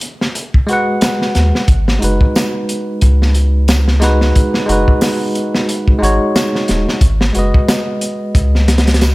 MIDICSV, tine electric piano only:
0, 0, Header, 1, 2, 480
1, 0, Start_track
1, 0, Key_signature, 5, "minor"
1, 0, Tempo, 666667
1, 1214, Time_signature, 4, 2, 24, 8
1, 6587, End_track
2, 0, Start_track
2, 0, Title_t, "Tine electric piano"
2, 0, Program_c, 0, 4
2, 480, Note_on_c, 0, 56, 92
2, 498, Note_on_c, 0, 66, 84
2, 510, Note_on_c, 0, 71, 81
2, 525, Note_on_c, 0, 78, 102
2, 1195, Note_off_c, 0, 56, 0
2, 1204, Note_off_c, 0, 66, 0
2, 1210, Note_off_c, 0, 71, 0
2, 1217, Note_off_c, 0, 78, 0
2, 1431, Note_on_c, 0, 56, 74
2, 1444, Note_on_c, 0, 63, 74
2, 1456, Note_on_c, 0, 66, 66
2, 1470, Note_on_c, 0, 71, 83
2, 2858, Note_off_c, 0, 56, 0
2, 2865, Note_off_c, 0, 63, 0
2, 2871, Note_off_c, 0, 66, 0
2, 2878, Note_off_c, 0, 71, 0
2, 2880, Note_on_c, 0, 56, 92
2, 2890, Note_on_c, 0, 63, 85
2, 2897, Note_on_c, 0, 66, 86
2, 2907, Note_on_c, 0, 71, 102
2, 3343, Note_off_c, 0, 56, 0
2, 3347, Note_off_c, 0, 63, 0
2, 3351, Note_off_c, 0, 66, 0
2, 3356, Note_off_c, 0, 71, 0
2, 3356, Note_on_c, 0, 56, 85
2, 3370, Note_on_c, 0, 63, 78
2, 3380, Note_on_c, 0, 66, 84
2, 3398, Note_on_c, 0, 71, 102
2, 4301, Note_off_c, 0, 56, 0
2, 4308, Note_off_c, 0, 63, 0
2, 4312, Note_on_c, 0, 56, 91
2, 4313, Note_off_c, 0, 66, 0
2, 4322, Note_off_c, 0, 71, 0
2, 4322, Note_on_c, 0, 63, 84
2, 4339, Note_on_c, 0, 66, 87
2, 4351, Note_on_c, 0, 73, 99
2, 5031, Note_off_c, 0, 56, 0
2, 5036, Note_off_c, 0, 63, 0
2, 5044, Note_off_c, 0, 66, 0
2, 5051, Note_off_c, 0, 73, 0
2, 5276, Note_on_c, 0, 56, 73
2, 5291, Note_on_c, 0, 66, 70
2, 5302, Note_on_c, 0, 71, 68
2, 5319, Note_on_c, 0, 75, 84
2, 6587, Note_off_c, 0, 56, 0
2, 6587, Note_off_c, 0, 66, 0
2, 6587, Note_off_c, 0, 71, 0
2, 6587, Note_off_c, 0, 75, 0
2, 6587, End_track
0, 0, End_of_file